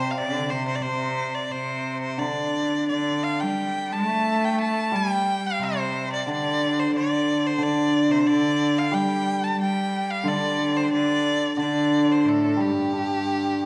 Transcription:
0.00 0.20 C3 medium
0.00 1.51 C3 medium
0.00 0.51 G3 medium
0.00 0.13 C5 medium
0.11 0.19 F5 medium
0.17 0.53 D3 medium
0.17 0.52 D5 medium
0.50 0.82 C3 medium
0.50 0.67 C5 medium
0.68 0.77 C5 medium
0.75 0.83 D5 medium
0.82 1.48 C3 medium
0.82 1.36 C5 medium
1.35 1.53 D5 medium
1.51 2.22 C3 medium
1.51 2.01 C5 medium
2.02 2.20 C5 medium
2.18 4.25 D3 medium
2.18 2.90 D3 medium
2.18 2.88 D5 medium
2.89 3.43 D3 medium
2.89 3.25 D5 medium
3.23 3.42 F5 medium
3.40 3.93 G3 medium
3.40 3.94 G5 medium
3.92 4.94 A3 medium
3.92 4.46 A5 medium
4.44 4.60 G5 medium
4.61 4.97 A5 medium
4.92 6.93 G3 medium
4.92 5.61 G3 medium
4.96 5.48 G5 medium
5.46 5.65 F5 medium
5.59 6.26 C3 medium
5.59 6.12 C5 medium
6.13 6.28 D5 medium
6.27 7.57 D3 medium
6.27 6.90 D3 medium
6.27 6.81 D5 medium
6.80 6.95 C5 medium
6.94 7.56 D3 medium
6.94 7.48 D5 medium
7.46 7.64 C5 medium
7.58 9.58 D3 medium
7.58 8.10 D3 medium
7.63 8.13 D5 medium
8.09 8.26 C3 medium
8.09 8.28 C5 medium
8.26 8.94 D3 medium
8.26 8.80 D5 medium
8.78 8.96 F5 medium
8.91 10.91 G3 medium
8.91 9.57 G3 medium
8.91 9.45 G5 medium
9.44 9.60 A5 medium
9.58 10.25 G3 medium
9.58 10.12 G5 medium
10.10 10.29 F5 medium
10.23 11.56 D3 medium
10.23 10.91 D3 medium
10.28 10.78 D5 medium
10.76 10.92 C5 medium
10.91 11.53 D3 medium
10.91 11.54 D5 loud
11.57 13.63 D3 medium
11.57 12.26 D3 medium
11.57 12.13 D5 medium
12.11 12.30 C5 medium
12.25 12.58 A2 medium
12.25 12.63 A4 medium
12.56 13.66 G2 medium
12.56 13.66 G3 medium
12.61 13.66 G4 medium
12.93 13.66 D4 soft

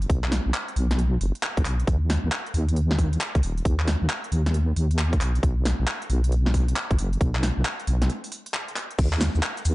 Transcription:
0.02 closed hi-hat soft
0.10 0.40 B1 loud
0.10 kick loud
0.10 closed hi-hat medium
0.24 clap medium
0.32 snare medium
0.32 open hi-hat loud
0.46 0.52 B1 medium
0.54 clap loud
0.68 closed hi-hat soft
0.76 1.17 B1 loud
0.76 open hi-hat loud
0.91 snare medium
0.91 closed hi-hat medium
0.99 closed hi-hat medium
1.21 1.31 F#1 medium
1.21 open hi-hat loud
1.35 closed hi-hat medium
1.43 clap loud
1.57 1.63 B1 medium
1.57 kick loud
1.57 closed hi-hat medium
1.65 1.83 B1 medium
1.65 clap medium
1.65 open hi-hat loud
1.80 closed hi-hat soft
1.87 2.18 D#2 loud
1.87 kick loud
1.87 closed hi-hat medium
2.10 snare medium
2.10 open hi-hat loud
2.24 2.30 D#2 medium
2.32 clap loud
2.46 closed hi-hat soft
2.54 3.17 D#2 loud
2.54 open hi-hat loud
2.69 closed hi-hat medium
2.76 closed hi-hat medium
2.91 snare medium
2.99 kick medium
2.99 open hi-hat loud
3.13 closed hi-hat medium
3.21 clap loud
3.35 3.41 C#2 medium
3.35 kick loud
3.35 closed hi-hat medium
3.43 3.61 D#1 medium
3.43 open hi-hat loud
3.58 closed hi-hat soft
3.65 3.96 D#2 loud
3.65 kick loud
3.65 closed hi-hat medium
3.80 clap medium
3.88 snare medium
3.88 open hi-hat loud
4.02 4.08 D#2 medium
4.10 clap loud
4.24 closed hi-hat soft
4.32 4.73 D#2 loud
4.32 open hi-hat loud
4.46 snare soft
4.46 closed hi-hat medium
4.54 closed hi-hat medium
4.76 5.17 D#2 medium
4.76 open hi-hat loud
4.91 closed hi-hat medium
4.99 clap loud
5.13 kick loud
5.13 closed hi-hat medium
5.21 5.39 B1 loud
5.21 clap medium
5.21 open hi-hat loud
5.35 closed hi-hat soft
5.43 5.74 B1 loud
5.43 kick loud
5.43 closed hi-hat medium
5.65 snare medium
5.65 open hi-hat loud
5.79 5.85 B1 medium
5.88 clap loud
6.02 closed hi-hat soft
6.10 6.73 B1 loud
6.10 open hi-hat loud
6.24 closed hi-hat medium
6.32 closed hi-hat medium
6.46 snare medium
6.54 kick medium
6.54 open hi-hat loud
6.68 closed hi-hat medium
6.76 clap loud
6.91 6.96 F#1 loud
6.91 kick loud
6.91 closed hi-hat medium
6.98 7.17 F#1 medium
6.98 open hi-hat loud
7.13 closed hi-hat soft
7.21 7.51 B1 loud
7.21 kick loud
7.21 closed hi-hat medium
7.35 clap medium
7.43 snare medium
7.43 open hi-hat loud
7.57 7.63 B1 medium
7.65 clap loud
7.80 closed hi-hat soft
7.87 8.10 B1 loud
7.87 open hi-hat loud
8.02 snare medium
8.02 closed hi-hat medium
8.10 closed hi-hat medium
8.24 open hi-hat medium
8.32 open hi-hat loud
8.46 closed hi-hat medium
8.54 clap loud
8.68 closed hi-hat medium
8.76 clap medium
8.76 open hi-hat loud
8.91 closed hi-hat soft
8.99 9.29 D#2 loud
8.99 kick loud
8.99 closed hi-hat medium
8.99 crash loud
8.99 cabasa soft
9.13 clap medium
9.13 cabasa soft
9.21 snare medium
9.21 open hi-hat loud
9.21 cabasa medium
9.35 9.41 D#2 medium
9.35 cabasa soft
9.43 clap loud
9.43 cabasa soft
9.57 closed hi-hat soft
9.57 cabasa soft
9.65 9.75 D#2 loud
9.65 open hi-hat loud
9.65 cabasa medium

